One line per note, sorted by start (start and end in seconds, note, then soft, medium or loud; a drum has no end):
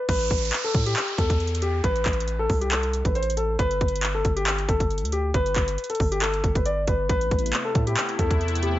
0.09 0.30 A1 loud
0.09 0.61 B4 loud
0.09 kick loud
0.09 closed hi-hat medium
0.09 crash loud
0.09 downlifter medium
0.20 closed hi-hat medium
0.31 0.52 A1 loud
0.31 kick loud
0.31 closed hi-hat medium
0.38 closed hi-hat medium
0.45 closed hi-hat medium
0.52 clap loud
0.52 closed hi-hat medium
0.64 0.81 A4 medium
0.74 0.95 A2 loud
0.74 kick loud
0.74 closed hi-hat medium
0.86 1.16 G4 medium
0.86 closed hi-hat medium
0.96 clap loud
0.96 closed hi-hat medium
1.08 closed hi-hat medium
1.18 1.81 E2 loud
1.18 1.59 A4 medium
1.18 kick loud
1.18 closed hi-hat medium
1.30 kick loud
1.30 closed hi-hat medium
1.40 closed hi-hat soft
1.47 closed hi-hat medium
1.55 closed hi-hat medium
1.62 1.79 G4 medium
1.62 closed hi-hat medium
1.84 2.05 A1 loud
1.84 2.36 B4 loud
1.84 kick loud
1.84 closed hi-hat medium
1.96 closed hi-hat medium
2.06 2.48 A1 loud
2.06 kick loud
2.06 clap medium
2.06 closed hi-hat medium
2.13 closed hi-hat medium
2.20 closed hi-hat medium
2.28 closed hi-hat medium
2.39 2.56 A4 medium
2.50 3.03 C2 loud
2.50 kick loud
2.50 open hi-hat medium
2.61 2.69 G4 medium
2.61 closed hi-hat medium
2.71 3.03 A4 medium
2.71 clap loud
2.71 closed hi-hat medium
2.83 closed hi-hat medium
2.93 closed hi-hat medium
3.05 3.57 A1 loud
3.05 3.13 B4 medium
3.05 kick loud
3.05 closed hi-hat medium
3.15 3.32 C5 medium
3.15 closed hi-hat soft
3.23 closed hi-hat medium
3.30 closed hi-hat medium
3.37 3.54 A4 medium
3.37 closed hi-hat medium
3.59 3.80 G1 loud
3.59 4.11 B4 loud
3.59 kick loud
3.59 closed hi-hat medium
3.71 closed hi-hat medium
3.81 4.23 G1 loud
3.81 kick loud
3.81 closed hi-hat medium
3.88 closed hi-hat medium
3.96 closed hi-hat medium
4.03 clap loud
4.03 closed hi-hat medium
4.14 4.31 A4 medium
4.25 4.67 G1 loud
4.25 kick loud
4.25 closed hi-hat medium
4.36 4.67 G4 medium
4.36 closed hi-hat medium
4.47 clap loud
4.47 closed hi-hat medium
4.58 closed hi-hat medium
4.68 5.04 G1 loud
4.68 5.10 A4 medium
4.68 kick loud
4.68 closed hi-hat medium
4.80 kick medium
4.80 closed hi-hat medium
4.91 closed hi-hat soft
4.98 closed hi-hat medium
5.02 5.33 D2 loud
5.02 closed hi-hat medium
5.12 5.29 G4 medium
5.12 closed hi-hat medium
5.34 5.55 G1 loud
5.34 5.86 B4 loud
5.34 kick loud
5.34 closed hi-hat medium
5.46 closed hi-hat medium
5.56 5.77 G1 loud
5.56 kick loud
5.56 clap medium
5.56 closed hi-hat soft
5.68 closed hi-hat medium
5.78 closed hi-hat medium
5.84 closed hi-hat medium
5.90 6.06 A4 medium
5.90 closed hi-hat medium
5.95 closed hi-hat medium
6.00 6.42 G1 loud
6.00 kick loud
6.00 open hi-hat medium
6.12 6.19 G4 medium
6.12 closed hi-hat medium
6.22 6.53 A4 medium
6.22 clap loud
6.22 closed hi-hat medium
6.34 closed hi-hat medium
6.44 6.86 G1 loud
6.44 kick loud
6.44 closed hi-hat medium
6.55 6.63 B4 medium
6.55 kick loud
6.55 closed hi-hat medium
6.66 6.82 D5 medium
6.66 closed hi-hat medium
6.87 7.09 G1 loud
6.87 7.04 B4 medium
6.87 kick loud
6.87 closed hi-hat medium
7.09 7.30 A1 loud
7.09 8.79 C3 medium
7.09 8.79 A3 medium
7.09 8.79 B3 medium
7.09 8.79 E4 loud
7.09 7.62 B4 loud
7.09 kick loud
7.09 closed hi-hat medium
7.21 closed hi-hat medium
7.31 7.52 A1 loud
7.31 kick loud
7.31 closed hi-hat soft
7.39 closed hi-hat medium
7.46 closed hi-hat medium
7.53 clap loud
7.53 closed hi-hat medium
7.65 7.81 A4 medium
7.75 7.96 A2 loud
7.75 kick loud
7.75 closed hi-hat medium
7.87 8.17 G4 medium
7.87 closed hi-hat medium
7.97 clap loud
7.97 closed hi-hat medium
8.09 closed hi-hat medium
8.19 8.79 E2 loud
8.19 8.60 A4 medium
8.19 kick loud
8.19 closed hi-hat medium
8.31 kick loud
8.31 closed hi-hat medium
8.41 closed hi-hat soft
8.48 closed hi-hat medium
8.55 closed hi-hat medium
8.63 8.79 G4 medium
8.63 closed hi-hat medium